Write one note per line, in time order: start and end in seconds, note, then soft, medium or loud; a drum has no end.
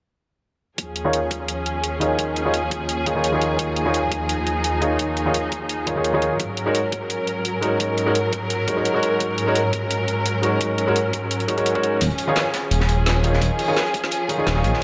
0.78 6.36 D#2 medium
0.78 6.36 F3 medium
0.78 3.56 C#4 medium
0.78 6.36 G#4 medium
0.78 kick loud
0.78 closed hi-hat medium
0.96 closed hi-hat medium
1.04 1.17 D#3 medium
1.04 1.17 D#4 medium
1.04 1.17 F4 medium
1.04 1.17 G#4 medium
1.04 1.17 C#5 loud
1.13 closed hi-hat medium
1.31 kick loud
1.31 closed hi-hat medium
1.48 closed hi-hat medium
1.66 closed hi-hat medium
1.84 closed hi-hat medium
2.00 2.43 D#3 medium
2.00 2.43 D#4 medium
2.00 2.43 F4 medium
2.00 2.44 G#4 medium
2.00 2.44 C#5 medium
2.00 closed hi-hat medium
2.19 kick loud
2.19 closed hi-hat medium
2.36 closed hi-hat medium
2.45 2.52 D#3 medium
2.45 2.53 D#4 medium
2.45 2.53 F4 medium
2.45 2.53 G#4 medium
2.45 2.53 C#5 medium
2.54 closed hi-hat medium
2.71 kick loud
2.71 closed hi-hat medium
2.89 closed hi-hat medium
3.06 3.14 D#3 medium
3.06 3.14 D#4 medium
3.06 3.14 F4 medium
3.06 3.15 G#4 medium
3.06 3.15 C#5 medium
3.06 kick loud
3.06 closed hi-hat medium
3.15 3.30 D#3 medium
3.15 3.31 D#4 medium
3.15 3.31 F4 medium
3.15 3.31 G#4 medium
3.15 3.31 C#5 medium
3.24 closed hi-hat medium
3.32 3.83 D#3 medium
3.32 3.83 D#4 medium
3.32 3.84 F4 medium
3.32 3.84 G#4 medium
3.32 3.84 C#5 loud
3.42 closed hi-hat medium
3.59 6.37 D#4 medium
3.59 kick loud
3.59 closed hi-hat medium
3.76 closed hi-hat medium
3.85 3.97 D#3 medium
3.85 3.98 D#4 medium
3.85 3.98 F4 medium
3.85 3.98 G#4 medium
3.85 3.98 C#5 loud
3.94 closed hi-hat medium
4.12 kick loud
4.12 closed hi-hat medium
4.29 closed hi-hat medium
4.47 closed hi-hat medium
4.64 closed hi-hat medium
4.80 5.23 D#3 medium
4.80 5.24 D#4 medium
4.80 5.24 F4 medium
4.80 5.24 G#4 medium
4.80 5.25 C#5 medium
4.80 closed hi-hat medium
4.99 kick loud
4.99 closed hi-hat medium
5.17 closed hi-hat medium
5.25 5.33 D#3 medium
5.25 5.33 D#4 medium
5.25 5.33 F4 medium
5.25 5.34 G#4 medium
5.25 5.34 C#5 loud
5.34 closed hi-hat medium
5.52 kick loud
5.52 closed hi-hat medium
5.69 closed hi-hat medium
5.86 5.94 D#3 medium
5.86 5.94 D#4 medium
5.86 5.95 F4 medium
5.86 5.95 G#4 medium
5.86 5.95 C#5 medium
5.86 kick loud
5.86 closed hi-hat medium
5.96 6.11 D#3 medium
5.96 6.11 D#4 medium
5.96 6.12 F4 medium
5.96 6.12 G#4 medium
5.96 6.12 C#5 medium
6.04 closed hi-hat medium
6.13 6.38 D#3 medium
6.13 6.39 D#4 medium
6.13 6.39 F4 medium
6.13 6.39 G#4 medium
6.13 6.39 C#5 loud
6.22 closed hi-hat medium
6.39 11.97 G#2 medium
6.39 11.97 F#3 medium
6.39 14.84 C#4 medium
6.39 11.97 A#4 medium
6.39 kick loud
6.39 closed hi-hat medium
6.57 closed hi-hat medium
6.66 6.78 G#3 medium
6.66 6.78 D#4 medium
6.66 6.78 F#4 medium
6.66 6.79 A#4 medium
6.66 6.79 C#5 loud
6.75 closed hi-hat medium
6.92 kick loud
6.92 closed hi-hat medium
7.10 closed hi-hat medium
7.27 closed hi-hat medium
7.45 closed hi-hat medium
7.61 8.04 G#3 medium
7.61 8.04 D#4 medium
7.61 8.05 F#4 medium
7.61 8.05 A#4 medium
7.61 8.05 C#5 medium
7.61 closed hi-hat medium
7.80 kick loud
7.80 closed hi-hat medium
7.98 closed hi-hat medium
8.06 8.14 G#3 medium
8.06 8.14 D#4 medium
8.06 8.14 F#4 medium
8.06 8.14 A#4 medium
8.06 8.14 C#5 loud
8.15 closed hi-hat medium
8.33 kick loud
8.33 closed hi-hat medium
8.50 closed hi-hat medium
8.67 8.75 G#3 medium
8.67 8.75 D#4 medium
8.67 8.76 F#4 medium
8.67 8.76 A#4 medium
8.67 8.76 C#5 medium
8.67 kick loud
8.67 closed hi-hat medium
8.76 8.92 G#3 medium
8.76 8.92 D#4 medium
8.76 8.92 F#4 medium
8.76 8.93 A#4 medium
8.76 8.93 C#5 medium
8.85 closed hi-hat medium
8.93 9.44 G#3 medium
8.93 9.45 D#4 medium
8.93 9.45 F#4 medium
8.93 9.45 A#4 medium
8.93 9.46 C#5 loud
9.03 closed hi-hat medium
9.20 kick loud
9.20 closed hi-hat medium
9.38 closed hi-hat medium
9.47 9.59 G#3 medium
9.47 9.59 D#4 medium
9.47 9.59 F#4 medium
9.47 9.59 A#4 medium
9.47 9.60 C#5 loud
9.55 closed hi-hat medium
9.73 kick loud
9.73 closed hi-hat medium
9.91 closed hi-hat medium
10.08 closed hi-hat medium
10.26 closed hi-hat medium
10.42 10.85 G#3 medium
10.42 10.85 D#4 medium
10.42 10.85 F#4 medium
10.42 10.86 A#4 medium
10.42 10.86 C#5 medium
10.42 closed hi-hat medium
10.61 kick loud
10.61 closed hi-hat medium
10.78 closed hi-hat medium
10.87 10.94 G#3 medium
10.87 10.95 D#4 medium
10.87 10.95 F#4 medium
10.87 10.95 A#4 medium
10.87 10.95 C#5 medium
10.96 closed hi-hat medium
11.13 kick loud
11.13 closed hi-hat medium
11.31 closed hi-hat medium
11.40 closed hi-hat soft
11.48 11.55 G#3 medium
11.48 11.56 D#4 medium
11.48 11.56 F#4 medium
11.48 11.57 A#4 medium
11.48 11.57 C#5 medium
11.48 kick loud
11.48 closed hi-hat medium
11.57 11.73 G#3 medium
11.57 11.73 D#4 medium
11.57 11.73 F#4 medium
11.57 11.73 A#4 medium
11.57 11.73 C#5 medium
11.57 closed hi-hat soft
11.66 closed hi-hat medium
11.74 12.00 G#3 medium
11.74 12.00 D#4 medium
11.74 12.00 F#4 medium
11.74 12.00 A#4 medium
11.74 12.00 C#5 loud
11.74 kick medium
11.83 closed hi-hat medium
12.01 12.09 D#1 loud
12.01 14.84 F3 medium
12.01 14.84 G#4 medium
12.01 kick loud
12.01 closed hi-hat medium
12.10 closed hi-hat soft
12.18 closed hi-hat medium
12.27 12.39 D#3 medium
12.27 12.40 D#4 medium
12.27 12.40 F4 medium
12.27 12.40 G#4 medium
12.27 12.40 C#5 loud
12.36 snare loud
12.36 closed hi-hat medium
12.53 kick loud
12.53 snare medium
12.53 closed hi-hat medium
12.71 13.40 D#1 medium
12.71 closed hi-hat medium
12.80 snare medium
12.89 closed hi-hat medium
13.06 snare loud
13.06 closed hi-hat medium
13.23 13.65 D#3 medium
13.23 13.66 D#4 medium
13.23 13.66 F4 medium
13.23 13.67 G#4 medium
13.23 13.67 C#5 medium
13.23 closed hi-hat medium
13.33 snare soft
13.41 13.50 D#1 loud
13.41 kick loud
13.41 closed hi-hat medium
13.59 closed hi-hat medium
13.59 open hi-hat medium
13.68 13.75 D#3 medium
13.68 13.75 D#4 medium
13.68 13.75 F4 medium
13.68 13.76 G#4 medium
13.68 13.76 C#5 medium
13.77 snare loud
13.77 closed hi-hat medium
13.86 closed hi-hat soft
13.94 kick loud
13.94 closed hi-hat medium
14.04 snare soft
14.11 closed hi-hat medium
14.28 14.36 D#3 medium
14.28 14.37 D#4 medium
14.28 14.37 F4 medium
14.28 14.37 G#4 medium
14.28 14.37 C#5 medium
14.28 kick loud
14.28 closed hi-hat medium
14.38 14.53 D#3 medium
14.38 14.54 D#4 medium
14.38 14.54 F4 medium
14.38 14.54 G#4 medium
14.38 14.54 C#5 medium
14.47 14.66 D#1 medium
14.47 snare loud
14.47 closed hi-hat medium
14.55 14.84 D#3 loud
14.55 14.84 D#4 medium
14.55 14.84 F4 medium
14.55 14.84 G#4 medium
14.55 14.84 C#5 loud
14.64 14.73 A#1 medium
14.64 closed hi-hat medium
14.73 snare soft